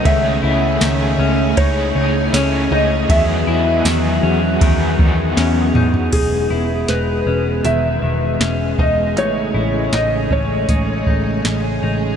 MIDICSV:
0, 0, Header, 1, 7, 480
1, 0, Start_track
1, 0, Key_signature, 4, "major"
1, 0, Tempo, 759494
1, 34, Time_signature, 4, 2, 24, 8
1, 7688, End_track
2, 0, Start_track
2, 0, Title_t, "Felt piano"
2, 0, Program_c, 0, 0
2, 33, Note_on_c, 0, 76, 102
2, 995, Note_on_c, 0, 73, 89
2, 1022, Note_off_c, 0, 76, 0
2, 1717, Note_on_c, 0, 75, 84
2, 1736, Note_off_c, 0, 73, 0
2, 1960, Note_on_c, 0, 76, 92
2, 1963, Note_off_c, 0, 75, 0
2, 3372, Note_off_c, 0, 76, 0
2, 3873, Note_on_c, 0, 68, 76
2, 4351, Note_on_c, 0, 71, 79
2, 4368, Note_off_c, 0, 68, 0
2, 4835, Note_on_c, 0, 76, 89
2, 4847, Note_off_c, 0, 71, 0
2, 5557, Note_on_c, 0, 75, 81
2, 5577, Note_off_c, 0, 76, 0
2, 5803, Note_off_c, 0, 75, 0
2, 5803, Note_on_c, 0, 73, 84
2, 6282, Note_on_c, 0, 75, 84
2, 6293, Note_off_c, 0, 73, 0
2, 6525, Note_on_c, 0, 73, 86
2, 6526, Note_off_c, 0, 75, 0
2, 6974, Note_off_c, 0, 73, 0
2, 7688, End_track
3, 0, Start_track
3, 0, Title_t, "Clean electric guitar"
3, 0, Program_c, 1, 27
3, 34, Note_on_c, 1, 51, 83
3, 271, Note_on_c, 1, 64, 75
3, 274, Note_off_c, 1, 51, 0
3, 513, Note_off_c, 1, 64, 0
3, 513, Note_on_c, 1, 51, 84
3, 754, Note_off_c, 1, 51, 0
3, 755, Note_on_c, 1, 61, 80
3, 991, Note_off_c, 1, 61, 0
3, 994, Note_on_c, 1, 63, 89
3, 1229, Note_off_c, 1, 63, 0
3, 1236, Note_on_c, 1, 63, 82
3, 1475, Note_off_c, 1, 63, 0
3, 1479, Note_on_c, 1, 61, 85
3, 1713, Note_off_c, 1, 61, 0
3, 1716, Note_on_c, 1, 63, 78
3, 1955, Note_off_c, 1, 63, 0
3, 1955, Note_on_c, 1, 51, 77
3, 2195, Note_off_c, 1, 51, 0
3, 2195, Note_on_c, 1, 64, 80
3, 2435, Note_off_c, 1, 64, 0
3, 2437, Note_on_c, 1, 51, 80
3, 2674, Note_on_c, 1, 61, 82
3, 2676, Note_off_c, 1, 51, 0
3, 2914, Note_off_c, 1, 61, 0
3, 2916, Note_on_c, 1, 51, 92
3, 3147, Note_off_c, 1, 51, 0
3, 3155, Note_on_c, 1, 51, 75
3, 3392, Note_on_c, 1, 61, 88
3, 3395, Note_off_c, 1, 51, 0
3, 3633, Note_off_c, 1, 61, 0
3, 3637, Note_on_c, 1, 63, 76
3, 3866, Note_off_c, 1, 63, 0
3, 3873, Note_on_c, 1, 63, 71
3, 4111, Note_on_c, 1, 64, 63
3, 4114, Note_off_c, 1, 63, 0
3, 4353, Note_off_c, 1, 64, 0
3, 4355, Note_on_c, 1, 63, 67
3, 4591, Note_off_c, 1, 63, 0
3, 4593, Note_on_c, 1, 61, 67
3, 4829, Note_on_c, 1, 51, 78
3, 4834, Note_off_c, 1, 61, 0
3, 5062, Note_off_c, 1, 51, 0
3, 5069, Note_on_c, 1, 51, 67
3, 5310, Note_on_c, 1, 61, 69
3, 5312, Note_off_c, 1, 51, 0
3, 5550, Note_off_c, 1, 61, 0
3, 5552, Note_on_c, 1, 63, 66
3, 5783, Note_off_c, 1, 63, 0
3, 5791, Note_on_c, 1, 63, 69
3, 6032, Note_on_c, 1, 64, 63
3, 6033, Note_off_c, 1, 63, 0
3, 6273, Note_off_c, 1, 64, 0
3, 6275, Note_on_c, 1, 63, 64
3, 6511, Note_off_c, 1, 63, 0
3, 6513, Note_on_c, 1, 61, 67
3, 6753, Note_off_c, 1, 61, 0
3, 6755, Note_on_c, 1, 63, 76
3, 6990, Note_off_c, 1, 63, 0
3, 6997, Note_on_c, 1, 63, 68
3, 7235, Note_off_c, 1, 63, 0
3, 7238, Note_on_c, 1, 61, 68
3, 7474, Note_off_c, 1, 61, 0
3, 7476, Note_on_c, 1, 63, 65
3, 7688, Note_off_c, 1, 63, 0
3, 7688, End_track
4, 0, Start_track
4, 0, Title_t, "Overdriven electric guitar"
4, 0, Program_c, 2, 29
4, 26, Note_on_c, 2, 49, 79
4, 32, Note_on_c, 2, 57, 90
4, 38, Note_on_c, 2, 61, 92
4, 45, Note_on_c, 2, 68, 99
4, 496, Note_off_c, 2, 57, 0
4, 504, Note_on_c, 2, 57, 60
4, 507, Note_off_c, 2, 61, 0
4, 510, Note_off_c, 2, 49, 0
4, 514, Note_on_c, 2, 61, 59
4, 523, Note_off_c, 2, 68, 0
4, 533, Note_on_c, 2, 68, 68
4, 987, Note_off_c, 2, 57, 0
4, 989, Note_on_c, 2, 49, 72
4, 992, Note_off_c, 2, 61, 0
4, 995, Note_on_c, 2, 57, 77
4, 1000, Note_on_c, 2, 61, 68
4, 1004, Note_on_c, 2, 64, 87
4, 1006, Note_off_c, 2, 68, 0
4, 1008, Note_on_c, 2, 68, 85
4, 1460, Note_off_c, 2, 57, 0
4, 1468, Note_on_c, 2, 57, 55
4, 1471, Note_off_c, 2, 61, 0
4, 1472, Note_off_c, 2, 49, 0
4, 1478, Note_on_c, 2, 61, 64
4, 1487, Note_off_c, 2, 68, 0
4, 1488, Note_off_c, 2, 64, 0
4, 1490, Note_on_c, 2, 64, 68
4, 1497, Note_on_c, 2, 68, 60
4, 1947, Note_on_c, 2, 52, 77
4, 1951, Note_off_c, 2, 57, 0
4, 1954, Note_on_c, 2, 54, 92
4, 1956, Note_off_c, 2, 61, 0
4, 1959, Note_on_c, 2, 59, 90
4, 1965, Note_off_c, 2, 68, 0
4, 1967, Note_on_c, 2, 68, 94
4, 1973, Note_off_c, 2, 64, 0
4, 2421, Note_off_c, 2, 54, 0
4, 2429, Note_on_c, 2, 54, 55
4, 2438, Note_off_c, 2, 59, 0
4, 2441, Note_on_c, 2, 59, 57
4, 2448, Note_off_c, 2, 52, 0
4, 2448, Note_off_c, 2, 68, 0
4, 2457, Note_on_c, 2, 68, 62
4, 2903, Note_on_c, 2, 52, 72
4, 2910, Note_off_c, 2, 54, 0
4, 2917, Note_on_c, 2, 54, 74
4, 2928, Note_off_c, 2, 59, 0
4, 2930, Note_on_c, 2, 59, 92
4, 2936, Note_off_c, 2, 68, 0
4, 2949, Note_on_c, 2, 68, 97
4, 3876, Note_off_c, 2, 54, 0
4, 4207, Note_off_c, 2, 52, 0
4, 4207, Note_off_c, 2, 59, 0
4, 4207, Note_off_c, 2, 68, 0
4, 7688, End_track
5, 0, Start_track
5, 0, Title_t, "String machine"
5, 0, Program_c, 3, 50
5, 0, Note_on_c, 3, 49, 82
5, 0, Note_on_c, 3, 57, 74
5, 33, Note_on_c, 3, 61, 91
5, 34, Note_on_c, 3, 68, 70
5, 1930, Note_off_c, 3, 49, 0
5, 1930, Note_off_c, 3, 57, 0
5, 1934, Note_off_c, 3, 61, 0
5, 1949, Note_on_c, 3, 59, 69
5, 1951, Note_on_c, 3, 54, 82
5, 1952, Note_on_c, 3, 66, 94
5, 3849, Note_off_c, 3, 68, 0
5, 3852, Note_off_c, 3, 59, 0
5, 3853, Note_off_c, 3, 54, 0
5, 3854, Note_off_c, 3, 66, 0
5, 3871, Note_on_c, 3, 47, 73
5, 3871, Note_on_c, 3, 68, 79
5, 3872, Note_on_c, 3, 56, 66
5, 3875, Note_on_c, 3, 59, 66
5, 5774, Note_off_c, 3, 47, 0
5, 5775, Note_off_c, 3, 59, 0
5, 5791, Note_on_c, 3, 49, 76
5, 5791, Note_on_c, 3, 57, 69
5, 7688, Note_off_c, 3, 49, 0
5, 7688, Note_off_c, 3, 56, 0
5, 7688, Note_off_c, 3, 57, 0
5, 7688, Note_off_c, 3, 68, 0
5, 7688, End_track
6, 0, Start_track
6, 0, Title_t, "Picked electric bass"
6, 0, Program_c, 4, 34
6, 34, Note_on_c, 4, 37, 114
6, 245, Note_off_c, 4, 37, 0
6, 272, Note_on_c, 4, 37, 99
6, 484, Note_off_c, 4, 37, 0
6, 513, Note_on_c, 4, 37, 107
6, 725, Note_off_c, 4, 37, 0
6, 750, Note_on_c, 4, 37, 92
6, 963, Note_off_c, 4, 37, 0
6, 995, Note_on_c, 4, 37, 114
6, 1206, Note_off_c, 4, 37, 0
6, 1234, Note_on_c, 4, 37, 105
6, 1446, Note_off_c, 4, 37, 0
6, 1473, Note_on_c, 4, 37, 102
6, 1685, Note_off_c, 4, 37, 0
6, 1713, Note_on_c, 4, 37, 99
6, 1925, Note_off_c, 4, 37, 0
6, 1956, Note_on_c, 4, 40, 107
6, 2167, Note_off_c, 4, 40, 0
6, 2194, Note_on_c, 4, 40, 90
6, 2406, Note_off_c, 4, 40, 0
6, 2434, Note_on_c, 4, 40, 106
6, 2645, Note_off_c, 4, 40, 0
6, 2674, Note_on_c, 4, 40, 99
6, 2886, Note_off_c, 4, 40, 0
6, 2916, Note_on_c, 4, 40, 103
6, 3127, Note_off_c, 4, 40, 0
6, 3155, Note_on_c, 4, 40, 103
6, 3366, Note_off_c, 4, 40, 0
6, 3395, Note_on_c, 4, 40, 109
6, 3606, Note_off_c, 4, 40, 0
6, 3630, Note_on_c, 4, 40, 85
6, 3843, Note_off_c, 4, 40, 0
6, 3874, Note_on_c, 4, 28, 88
6, 4085, Note_off_c, 4, 28, 0
6, 4112, Note_on_c, 4, 28, 81
6, 4324, Note_off_c, 4, 28, 0
6, 4351, Note_on_c, 4, 28, 82
6, 4563, Note_off_c, 4, 28, 0
6, 4592, Note_on_c, 4, 28, 79
6, 4804, Note_off_c, 4, 28, 0
6, 4831, Note_on_c, 4, 28, 81
6, 5044, Note_off_c, 4, 28, 0
6, 5072, Note_on_c, 4, 28, 80
6, 5284, Note_off_c, 4, 28, 0
6, 5312, Note_on_c, 4, 28, 94
6, 5524, Note_off_c, 4, 28, 0
6, 5552, Note_on_c, 4, 28, 79
6, 5790, Note_off_c, 4, 28, 0
6, 5790, Note_on_c, 4, 33, 95
6, 6003, Note_off_c, 4, 33, 0
6, 6031, Note_on_c, 4, 33, 81
6, 6244, Note_off_c, 4, 33, 0
6, 6274, Note_on_c, 4, 33, 87
6, 6485, Note_off_c, 4, 33, 0
6, 6513, Note_on_c, 4, 33, 83
6, 6725, Note_off_c, 4, 33, 0
6, 6754, Note_on_c, 4, 33, 86
6, 6966, Note_off_c, 4, 33, 0
6, 6995, Note_on_c, 4, 33, 82
6, 7206, Note_off_c, 4, 33, 0
6, 7236, Note_on_c, 4, 33, 86
6, 7446, Note_off_c, 4, 33, 0
6, 7473, Note_on_c, 4, 33, 73
6, 7685, Note_off_c, 4, 33, 0
6, 7688, End_track
7, 0, Start_track
7, 0, Title_t, "Drums"
7, 34, Note_on_c, 9, 36, 114
7, 34, Note_on_c, 9, 51, 60
7, 97, Note_off_c, 9, 36, 0
7, 98, Note_off_c, 9, 51, 0
7, 512, Note_on_c, 9, 54, 73
7, 514, Note_on_c, 9, 51, 59
7, 515, Note_on_c, 9, 38, 117
7, 575, Note_off_c, 9, 54, 0
7, 578, Note_off_c, 9, 38, 0
7, 578, Note_off_c, 9, 51, 0
7, 994, Note_on_c, 9, 51, 63
7, 995, Note_on_c, 9, 36, 108
7, 1057, Note_off_c, 9, 51, 0
7, 1058, Note_off_c, 9, 36, 0
7, 1479, Note_on_c, 9, 38, 105
7, 1479, Note_on_c, 9, 51, 66
7, 1479, Note_on_c, 9, 54, 70
7, 1542, Note_off_c, 9, 38, 0
7, 1542, Note_off_c, 9, 51, 0
7, 1542, Note_off_c, 9, 54, 0
7, 1956, Note_on_c, 9, 36, 102
7, 1957, Note_on_c, 9, 51, 66
7, 2019, Note_off_c, 9, 36, 0
7, 2021, Note_off_c, 9, 51, 0
7, 2435, Note_on_c, 9, 54, 75
7, 2437, Note_on_c, 9, 38, 108
7, 2437, Note_on_c, 9, 51, 63
7, 2498, Note_off_c, 9, 54, 0
7, 2500, Note_off_c, 9, 38, 0
7, 2500, Note_off_c, 9, 51, 0
7, 2916, Note_on_c, 9, 36, 108
7, 2916, Note_on_c, 9, 51, 64
7, 2979, Note_off_c, 9, 36, 0
7, 2979, Note_off_c, 9, 51, 0
7, 3155, Note_on_c, 9, 36, 101
7, 3218, Note_off_c, 9, 36, 0
7, 3395, Note_on_c, 9, 38, 60
7, 3398, Note_on_c, 9, 51, 65
7, 3459, Note_off_c, 9, 38, 0
7, 3461, Note_off_c, 9, 51, 0
7, 3634, Note_on_c, 9, 45, 100
7, 3697, Note_off_c, 9, 45, 0
7, 3753, Note_on_c, 9, 43, 102
7, 3816, Note_off_c, 9, 43, 0
7, 3871, Note_on_c, 9, 49, 66
7, 3872, Note_on_c, 9, 36, 92
7, 3872, Note_on_c, 9, 42, 59
7, 3934, Note_off_c, 9, 49, 0
7, 3935, Note_off_c, 9, 42, 0
7, 3936, Note_off_c, 9, 36, 0
7, 4351, Note_on_c, 9, 38, 93
7, 4351, Note_on_c, 9, 42, 64
7, 4414, Note_off_c, 9, 38, 0
7, 4414, Note_off_c, 9, 42, 0
7, 4832, Note_on_c, 9, 42, 63
7, 4895, Note_off_c, 9, 42, 0
7, 5313, Note_on_c, 9, 38, 90
7, 5314, Note_on_c, 9, 42, 65
7, 5377, Note_off_c, 9, 38, 0
7, 5377, Note_off_c, 9, 42, 0
7, 5552, Note_on_c, 9, 36, 79
7, 5615, Note_off_c, 9, 36, 0
7, 5796, Note_on_c, 9, 42, 64
7, 5859, Note_off_c, 9, 42, 0
7, 6274, Note_on_c, 9, 38, 92
7, 6274, Note_on_c, 9, 42, 63
7, 6337, Note_off_c, 9, 38, 0
7, 6337, Note_off_c, 9, 42, 0
7, 6514, Note_on_c, 9, 36, 75
7, 6577, Note_off_c, 9, 36, 0
7, 6754, Note_on_c, 9, 42, 64
7, 6755, Note_on_c, 9, 36, 85
7, 6817, Note_off_c, 9, 42, 0
7, 6818, Note_off_c, 9, 36, 0
7, 6995, Note_on_c, 9, 36, 80
7, 7058, Note_off_c, 9, 36, 0
7, 7236, Note_on_c, 9, 38, 92
7, 7236, Note_on_c, 9, 42, 65
7, 7299, Note_off_c, 9, 38, 0
7, 7299, Note_off_c, 9, 42, 0
7, 7688, End_track
0, 0, End_of_file